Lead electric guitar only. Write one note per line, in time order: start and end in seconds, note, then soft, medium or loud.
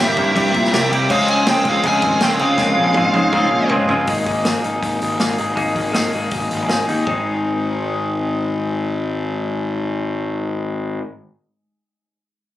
0.00 0.88 E5 medium
1.11 1.30 F5 loud
1.30 1.47 G#5 loud
1.48 1.67 G5 medium
1.69 1.85 F5 medium
1.87 2.22 G#5 loud
2.23 2.28 G5 loud
2.43 3.72 F5 medium